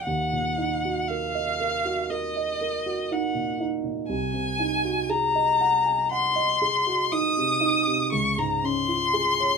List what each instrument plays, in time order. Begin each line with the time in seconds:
0.04 grand piano D#2, violin F#5
0.32 grand piano A#2
0.58 grand piano D#4
0.85 grand piano F#4
1.08 grand piano A#4, violin F5
1.35 grand piano D#5
1.60 grand piano A#4
1.85 grand piano F#4
2.10 grand piano A#4, violin D#5
2.36 grand piano D#5
2.61 grand piano A#4
2.86 grand piano F#4
3.11 grand piano D#4, violin F#5
3.35 grand piano A#2
3.60 grand piano D#4
3.84 grand piano A#2
4.09 grand piano C2, violin G#5
4.34 grand piano C3
4.59 grand piano D#4
4.85 grand piano F#4
5.09 grand piano G#4, violin A#5
5.35 grand piano D#5
5.61 grand piano F#5
5.86 grand piano G#5
6.11 grand piano F#5, violin C6
6.36 grand piano D#5
6.62 grand piano G#4
6.87 grand piano F#4
7.12 grand piano D#4, violin D#6
7.37 grand piano C3
7.61 grand piano D#4
7.87 grand piano C3
8.12 grand piano C#2, violin C#6
8.38 grand piano G#2, violin A#5
8.64 grand piano C#4, violin C6
8.88 grand piano F4
9.13 grand piano G#4
9.40 grand piano C#5